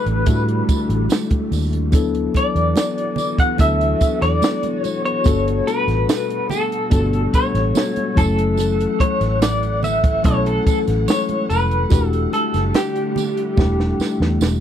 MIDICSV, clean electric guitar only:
0, 0, Header, 1, 2, 480
1, 0, Start_track
1, 0, Tempo, 831025
1, 1118, Time_signature, 4, 2, 24, 8
1, 8434, End_track
2, 0, Start_track
2, 0, Title_t, "Clean electric guitar"
2, 0, Program_c, 0, 27
2, 0, Note_on_c, 0, 71, 77
2, 621, Note_off_c, 0, 71, 0
2, 1369, Note_on_c, 0, 74, 107
2, 1960, Note_off_c, 0, 74, 0
2, 1962, Note_on_c, 0, 78, 103
2, 2080, Note_off_c, 0, 78, 0
2, 2082, Note_on_c, 0, 76, 99
2, 2437, Note_off_c, 0, 76, 0
2, 2439, Note_on_c, 0, 74, 105
2, 2780, Note_off_c, 0, 74, 0
2, 2780, Note_on_c, 0, 73, 105
2, 2917, Note_off_c, 0, 73, 0
2, 2920, Note_on_c, 0, 73, 98
2, 3277, Note_on_c, 0, 71, 108
2, 3290, Note_off_c, 0, 73, 0
2, 3755, Note_off_c, 0, 71, 0
2, 3757, Note_on_c, 0, 69, 88
2, 4245, Note_on_c, 0, 73, 97
2, 4252, Note_off_c, 0, 69, 0
2, 4722, Note_on_c, 0, 69, 98
2, 4736, Note_off_c, 0, 73, 0
2, 5201, Note_on_c, 0, 73, 97
2, 5215, Note_off_c, 0, 69, 0
2, 5444, Note_off_c, 0, 73, 0
2, 5446, Note_on_c, 0, 74, 94
2, 5682, Note_off_c, 0, 74, 0
2, 5684, Note_on_c, 0, 76, 91
2, 5924, Note_off_c, 0, 76, 0
2, 5926, Note_on_c, 0, 73, 96
2, 6046, Note_on_c, 0, 69, 91
2, 6047, Note_off_c, 0, 73, 0
2, 6157, Note_off_c, 0, 69, 0
2, 6163, Note_on_c, 0, 69, 81
2, 6228, Note_off_c, 0, 69, 0
2, 6400, Note_on_c, 0, 73, 85
2, 6638, Note_off_c, 0, 73, 0
2, 6640, Note_on_c, 0, 71, 93
2, 6969, Note_off_c, 0, 71, 0
2, 6969, Note_on_c, 0, 69, 93
2, 7098, Note_off_c, 0, 69, 0
2, 7124, Note_on_c, 0, 69, 80
2, 7365, Note_on_c, 0, 67, 73
2, 7370, Note_off_c, 0, 69, 0
2, 8302, Note_off_c, 0, 67, 0
2, 8434, End_track
0, 0, End_of_file